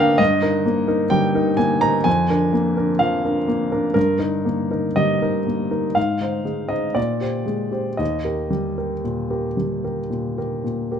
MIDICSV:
0, 0, Header, 1, 2, 480
1, 0, Start_track
1, 0, Key_signature, -3, "major"
1, 0, Tempo, 938967
1, 100, Time_signature, 4, 2, 24, 8
1, 2022, Tempo, 1003344
1, 3462, Tempo, 1050788
1, 5303, End_track
2, 0, Start_track
2, 0, Title_t, "Grand piano"
2, 0, Program_c, 0, 0
2, 0, Control_c, 0, 64, 127
2, 0, Note_on_c, 0, 44, 73
2, 0, Note_on_c, 0, 56, 47
2, 0, Note_on_c, 0, 58, 48
2, 0, Note_on_c, 0, 62, 50
2, 0, Note_on_c, 0, 70, 55
2, 0, Note_on_c, 0, 75, 85
2, 0, Note_on_c, 0, 77, 87
2, 0, Note_on_c, 0, 79, 88
2, 53, Note_off_c, 0, 58, 0
2, 89, Note_off_c, 0, 62, 0
2, 90, Note_off_c, 0, 70, 0
2, 92, Note_off_c, 0, 75, 0
2, 92, Note_on_c, 0, 75, 83
2, 98, Note_off_c, 0, 77, 0
2, 98, Note_on_c, 0, 43, 60
2, 107, Control_c, 0, 64, 0
2, 108, Note_off_c, 0, 79, 0
2, 111, Note_off_c, 0, 56, 0
2, 112, Note_off_c, 0, 44, 0
2, 195, Control_c, 0, 64, 127
2, 212, Note_off_c, 0, 43, 0
2, 214, Note_on_c, 0, 63, 49
2, 217, Note_on_c, 0, 70, 52
2, 321, Note_off_c, 0, 63, 0
2, 322, Note_off_c, 0, 70, 0
2, 335, Note_on_c, 0, 58, 52
2, 448, Note_on_c, 0, 63, 48
2, 450, Note_on_c, 0, 70, 46
2, 524, Note_off_c, 0, 58, 0
2, 557, Note_off_c, 0, 63, 0
2, 558, Note_off_c, 0, 70, 0
2, 562, Note_on_c, 0, 79, 81
2, 567, Note_off_c, 0, 75, 0
2, 569, Note_on_c, 0, 55, 49
2, 690, Note_on_c, 0, 63, 48
2, 691, Note_on_c, 0, 70, 49
2, 762, Note_off_c, 0, 55, 0
2, 799, Note_off_c, 0, 63, 0
2, 799, Note_off_c, 0, 70, 0
2, 802, Note_on_c, 0, 80, 73
2, 806, Note_on_c, 0, 58, 44
2, 807, Note_off_c, 0, 79, 0
2, 926, Note_on_c, 0, 82, 82
2, 928, Note_off_c, 0, 80, 0
2, 929, Note_on_c, 0, 63, 44
2, 931, Note_on_c, 0, 70, 46
2, 1002, Note_off_c, 0, 58, 0
2, 1039, Note_off_c, 0, 63, 0
2, 1040, Note_off_c, 0, 70, 0
2, 1043, Note_on_c, 0, 80, 81
2, 1046, Note_on_c, 0, 41, 60
2, 1050, Note_off_c, 0, 82, 0
2, 1063, Control_c, 0, 64, 0
2, 1148, Control_c, 0, 64, 127
2, 1168, Note_off_c, 0, 41, 0
2, 1173, Note_on_c, 0, 62, 44
2, 1176, Note_on_c, 0, 70, 46
2, 1283, Note_off_c, 0, 62, 0
2, 1285, Note_off_c, 0, 70, 0
2, 1293, Note_on_c, 0, 58, 46
2, 1416, Note_on_c, 0, 62, 41
2, 1417, Note_on_c, 0, 70, 44
2, 1489, Note_off_c, 0, 58, 0
2, 1526, Note_off_c, 0, 62, 0
2, 1526, Note_off_c, 0, 70, 0
2, 1529, Note_on_c, 0, 77, 69
2, 1533, Note_off_c, 0, 80, 0
2, 1534, Note_on_c, 0, 53, 43
2, 1659, Note_on_c, 0, 62, 40
2, 1661, Note_on_c, 0, 70, 42
2, 1729, Note_off_c, 0, 53, 0
2, 1767, Note_off_c, 0, 62, 0
2, 1768, Note_off_c, 0, 70, 0
2, 1778, Note_on_c, 0, 58, 44
2, 1901, Note_on_c, 0, 62, 42
2, 1902, Note_on_c, 0, 70, 47
2, 1972, Note_off_c, 0, 58, 0
2, 2007, Note_off_c, 0, 70, 0
2, 2011, Note_off_c, 0, 62, 0
2, 2015, Note_on_c, 0, 70, 71
2, 2017, Note_off_c, 0, 77, 0
2, 2022, Note_on_c, 0, 43, 55
2, 2032, Control_c, 0, 64, 0
2, 2120, Control_c, 0, 64, 127
2, 2129, Note_off_c, 0, 70, 0
2, 2135, Note_on_c, 0, 63, 41
2, 2136, Note_off_c, 0, 43, 0
2, 2136, Note_on_c, 0, 70, 43
2, 2249, Note_off_c, 0, 63, 0
2, 2249, Note_off_c, 0, 70, 0
2, 2260, Note_on_c, 0, 58, 42
2, 2381, Note_on_c, 0, 63, 39
2, 2384, Note_on_c, 0, 70, 41
2, 2461, Note_off_c, 0, 58, 0
2, 2495, Note_off_c, 0, 63, 0
2, 2497, Note_off_c, 0, 70, 0
2, 2502, Note_on_c, 0, 75, 71
2, 2505, Note_on_c, 0, 55, 41
2, 2628, Note_on_c, 0, 63, 37
2, 2628, Note_on_c, 0, 70, 43
2, 2699, Note_off_c, 0, 55, 0
2, 2735, Note_off_c, 0, 63, 0
2, 2735, Note_off_c, 0, 70, 0
2, 2745, Note_on_c, 0, 58, 36
2, 2860, Note_on_c, 0, 63, 35
2, 2862, Note_on_c, 0, 70, 37
2, 2935, Note_off_c, 0, 58, 0
2, 2969, Note_off_c, 0, 63, 0
2, 2970, Note_off_c, 0, 70, 0
2, 2976, Note_on_c, 0, 77, 66
2, 2979, Note_off_c, 0, 75, 0
2, 2980, Note_on_c, 0, 44, 49
2, 2990, Control_c, 0, 64, 0
2, 3076, Control_c, 0, 64, 127
2, 3096, Note_off_c, 0, 44, 0
2, 3101, Note_on_c, 0, 63, 35
2, 3104, Note_on_c, 0, 72, 38
2, 3209, Note_off_c, 0, 63, 0
2, 3210, Note_off_c, 0, 72, 0
2, 3216, Note_on_c, 0, 56, 35
2, 3328, Note_on_c, 0, 75, 54
2, 3333, Note_on_c, 0, 63, 30
2, 3335, Note_on_c, 0, 72, 33
2, 3337, Note_off_c, 0, 77, 0
2, 3411, Note_off_c, 0, 56, 0
2, 3446, Note_off_c, 0, 63, 0
2, 3447, Note_off_c, 0, 72, 0
2, 3453, Note_on_c, 0, 74, 56
2, 3456, Note_off_c, 0, 75, 0
2, 3456, Note_on_c, 0, 46, 41
2, 3471, Control_c, 0, 64, 0
2, 3562, Control_c, 0, 64, 127
2, 3573, Note_off_c, 0, 46, 0
2, 3573, Note_on_c, 0, 67, 31
2, 3574, Note_on_c, 0, 72, 32
2, 3682, Note_off_c, 0, 67, 0
2, 3682, Note_off_c, 0, 72, 0
2, 3687, Note_on_c, 0, 56, 34
2, 3804, Note_on_c, 0, 67, 30
2, 3809, Note_on_c, 0, 72, 35
2, 3882, Note_off_c, 0, 56, 0
2, 3917, Note_off_c, 0, 67, 0
2, 3919, Note_off_c, 0, 72, 0
2, 3923, Note_on_c, 0, 75, 52
2, 3928, Note_on_c, 0, 39, 39
2, 3930, Note_off_c, 0, 74, 0
2, 3943, Control_c, 0, 64, 0
2, 4013, Control_c, 0, 64, 127
2, 4046, Note_on_c, 0, 67, 32
2, 4048, Note_off_c, 0, 39, 0
2, 4048, Note_on_c, 0, 70, 32
2, 4158, Note_off_c, 0, 67, 0
2, 4159, Note_off_c, 0, 70, 0
2, 4165, Note_on_c, 0, 55, 32
2, 4289, Note_on_c, 0, 67, 28
2, 4290, Note_on_c, 0, 70, 31
2, 4363, Note_off_c, 0, 55, 0
2, 4401, Note_off_c, 0, 67, 0
2, 4401, Note_off_c, 0, 70, 0
2, 4412, Note_on_c, 0, 46, 31
2, 4529, Note_on_c, 0, 67, 30
2, 4531, Note_on_c, 0, 70, 33
2, 4607, Note_off_c, 0, 46, 0
2, 4641, Note_off_c, 0, 67, 0
2, 4642, Note_off_c, 0, 70, 0
2, 4652, Note_on_c, 0, 55, 30
2, 4777, Note_on_c, 0, 67, 28
2, 4777, Note_on_c, 0, 70, 30
2, 4847, Note_off_c, 0, 55, 0
2, 4885, Note_off_c, 0, 67, 0
2, 4885, Note_off_c, 0, 70, 0
2, 4895, Note_on_c, 0, 46, 33
2, 5013, Note_off_c, 0, 46, 0
2, 5020, Note_on_c, 0, 67, 30
2, 5023, Note_on_c, 0, 70, 32
2, 5129, Note_off_c, 0, 67, 0
2, 5130, Note_off_c, 0, 70, 0
2, 5141, Note_on_c, 0, 46, 31
2, 5266, Note_on_c, 0, 67, 29
2, 5268, Note_on_c, 0, 70, 30
2, 5303, Note_off_c, 0, 46, 0
2, 5303, Note_off_c, 0, 67, 0
2, 5303, Note_off_c, 0, 70, 0
2, 5303, Note_off_c, 0, 75, 0
2, 5303, End_track
0, 0, End_of_file